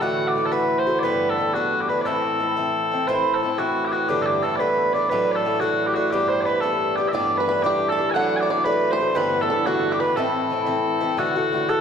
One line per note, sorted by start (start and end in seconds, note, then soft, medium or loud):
0.00 3.05 A2 medium
0.00 0.34 A2 medium
0.00 0.35 D3 medium
0.00 3.06 E3 medium
0.00 0.36 A3 medium
0.00 0.37 F#4 medium
0.00 0.28 F#5 loud
0.28 0.36 D5 medium
0.35 0.52 A2 soft
0.35 0.52 D3 soft
0.35 0.51 A3 soft
0.35 0.51 F#4 soft
0.35 0.45 D5 medium
0.45 0.52 A4 medium
0.52 0.88 A2 soft
0.52 0.87 D3 medium
0.52 0.87 A3 soft
0.52 0.86 F#4 medium
0.52 0.79 B4 medium
0.79 0.99 C5 medium
0.87 1.03 D3 soft
0.87 1.04 A3 soft
0.87 1.03 F#4 medium
0.99 1.03 D5 medium
1.03 1.37 G2 medium
1.03 1.38 D3 medium
1.03 1.39 B3 medium
1.03 1.39 D4 medium
1.03 1.30 B4 medium
1.30 1.38 A4 medium
1.38 1.55 G2 soft
1.38 1.55 D3 soft
1.38 1.55 B3 soft
1.38 1.54 D4 medium
1.38 1.53 A4 medium
1.53 1.91 G2 soft
1.53 1.90 D3 soft
1.53 1.90 B3 medium
1.53 1.88 D4 medium
1.53 1.81 F#4 medium
1.81 1.89 G4 medium
1.89 2.06 D3 soft
1.89 2.07 B3 soft
1.89 2.06 D4 soft
1.89 2.01 B4 medium
2.01 2.06 D5 medium
2.05 2.39 A2 medium
2.05 2.40 E3 medium
2.05 2.41 C4 medium
2.05 2.41 E4 medium
2.05 3.07 A4 medium
2.40 2.56 A2 medium
2.40 2.57 E3 soft
2.40 2.56 C4 soft
2.40 2.55 E4 soft
2.57 2.92 A2 medium
2.57 2.92 E3 soft
2.57 2.91 C4 medium
2.57 2.90 E4 medium
2.91 3.08 E3 soft
2.91 3.08 C4 soft
2.91 3.08 E4 soft
3.07 7.12 A2 medium
3.07 3.41 A2 medium
3.07 7.12 E3 medium
3.07 3.42 E3 medium
3.07 3.43 C4 medium
3.07 3.43 E4 medium
3.07 3.34 C5 medium
3.34 3.42 A4 medium
3.42 3.59 A2 soft
3.42 3.58 E3 medium
3.42 3.58 C4 medium
3.42 3.57 E4 medium
3.42 3.58 A4 medium
3.58 3.94 A2 soft
3.58 3.94 E3 medium
3.58 3.92 C4 medium
3.58 3.91 E4 medium
3.58 3.85 F#4 medium
3.85 3.92 G4 medium
3.92 4.09 E3 soft
3.92 4.10 C4 soft
3.92 4.09 E4 soft
3.92 4.09 F#4 medium
4.08 4.41 G2 medium
4.08 4.43 D3 medium
4.08 4.43 B3 medium
4.08 4.44 D4 medium
4.08 4.22 G4 medium
4.22 4.26 A4 medium
4.26 4.43 G4 medium
4.43 4.60 G2 soft
4.43 4.60 D3 soft
4.43 4.59 B3 soft
4.43 4.59 D4 soft
4.43 4.56 A4 medium
4.56 4.94 D4 medium
4.56 4.93 B4 medium
4.56 4.59 D5 medium
4.60 4.95 G2 soft
4.60 4.97 D3 soft
4.60 4.95 B3 medium
4.93 5.11 D3 soft
4.93 5.12 B3 soft
4.93 5.11 D4 soft
4.93 5.09 D5 medium
5.09 5.44 A2 medium
5.09 5.45 F#3 medium
5.09 5.46 A3 medium
5.09 5.48 D4 medium
5.09 5.31 B4 medium
5.31 5.44 A4 medium
5.31 5.35 D5 medium
5.44 5.61 A2 soft
5.44 5.61 F#3 medium
5.44 5.61 A3 medium
5.44 5.60 A4 medium
5.48 5.60 D4 medium
5.60 5.97 A2 soft
5.60 5.96 F#3 medium
5.60 5.96 A3 soft
5.60 5.95 D4 medium
5.60 5.87 F#4 medium
5.87 5.94 G4 medium
5.94 6.13 A3 soft
5.94 6.12 D4 soft
5.94 6.11 F#4 medium
5.98 6.13 F#3 soft
6.11 6.45 G2 medium
6.11 6.46 G3 medium
6.11 6.47 B3 medium
6.11 6.49 D4 medium
6.11 6.28 G4 medium
6.28 6.41 C5 medium
6.41 6.45 D5 medium
6.45 6.63 G2 soft
6.45 6.63 G3 soft
6.45 6.62 B3 medium
6.45 6.61 D4 soft
6.45 6.61 B4 medium
6.61 6.98 G2 soft
6.61 6.98 G3 soft
6.61 6.97 B3 medium
6.61 6.97 D4 medium
6.61 6.96 A4 medium
6.96 7.13 G3 soft
6.96 7.13 B3 soft
6.96 7.14 D4 soft
6.96 7.08 G4 medium
7.08 7.37 D5 medium
7.08 7.12 E5 medium
7.13 7.47 G2 medium
7.13 11.17 A2 medium
7.13 11.17 E3 medium
7.13 7.47 G3 medium
7.13 7.48 B3 medium
7.13 7.50 D4 medium
7.13 7.40 D5 medium
7.37 7.46 B4 medium
7.37 7.48 B4 medium
7.46 7.64 G2 soft
7.46 7.64 G3 soft
7.46 7.64 B3 medium
7.46 7.62 D4 medium
7.46 7.63 B4 medium
7.46 7.65 B4 medium
7.63 7.99 G2 soft
7.63 7.99 G3 medium
7.63 7.97 B3 medium
7.63 7.97 D4 medium
7.63 7.89 G4 medium
7.63 7.90 G4 medium
7.89 8.10 A4 medium
7.89 8.07 A4 medium
7.97 8.15 G3 soft
7.97 8.15 B3 soft
7.97 8.14 D4 soft
8.10 8.36 F#5 medium
8.10 8.14 G#5 medium
8.15 8.47 A2 medium
8.15 8.48 F#3 medium
8.15 8.49 A3 medium
8.15 8.50 D4 medium
8.15 8.42 F#5 medium
8.36 8.40 G#5 medium
8.40 8.48 D5 medium
8.40 8.49 D5 medium
8.48 8.65 A2 soft
8.48 8.65 F#3 soft
8.48 8.65 A3 medium
8.48 8.64 D4 soft
8.48 8.64 D5 medium
8.48 8.65 D5 medium
8.64 9.01 A2 medium
8.64 9.00 F#3 soft
8.64 9.00 A3 medium
8.64 8.98 D4 medium
8.64 8.91 B4 loud
8.64 8.90 B4 medium
8.91 9.15 C5 medium
8.91 9.07 C5 medium
8.99 9.15 F#3 soft
8.99 9.16 A3 soft
8.99 9.15 D4 soft
9.15 9.48 G2 medium
9.15 9.49 D3 medium
9.15 9.50 B3 medium
9.15 9.51 D4 medium
9.15 9.41 B4 medium
9.15 9.43 B4 medium
9.41 9.49 A4 medium
9.49 9.66 G2 soft
9.49 9.66 D3 medium
9.49 9.66 B3 medium
9.49 9.65 D4 medium
9.49 9.66 A4 medium
9.49 9.65 A4 medium
9.66 10.02 G2 medium
9.66 10.01 D3 medium
9.66 10.00 B3 medium
9.66 9.99 D4 medium
9.66 9.92 F#4 medium
9.66 9.91 F#4 medium
9.92 10.01 G4 medium
9.92 10.00 G4 medium
10.00 10.18 D3 soft
10.00 10.17 B3 soft
10.00 10.17 D4 soft
10.00 10.16 B4 medium
10.00 10.15 B4 medium
10.16 10.49 A2 medium
10.16 10.50 E3 medium
10.16 10.51 C4 medium
10.16 10.52 E4 medium
10.16 11.18 A4 medium
10.16 10.98 A4 medium
10.50 10.67 A2 soft
10.50 10.66 E3 medium
10.50 10.65 C4 soft
10.50 10.65 E4 medium
10.66 11.02 A2 medium
10.66 11.02 E3 soft
10.66 11.01 C4 medium
10.66 10.99 E4 medium
11.01 11.18 E3 soft
11.01 11.18 C4 soft
11.01 11.18 E4 medium
11.17 11.36 A2 medium
11.17 11.81 A2 medium
11.17 11.36 D3 medium
11.17 11.81 E3 medium
11.17 11.35 A3 medium
11.17 11.69 F#4 medium
11.17 11.35 F#4 medium
11.36 11.53 D3 soft
11.36 11.53 A3 soft
11.36 11.52 F#4 soft
11.52 11.69 A2 soft
11.52 11.69 D3 medium
11.52 11.68 A3 soft
11.52 11.67 F#4 medium
11.69 11.81 A2 soft
11.69 11.81 D3 soft
11.69 11.81 A3 medium
11.69 11.81 F#4 medium
11.69 11.81 A4 medium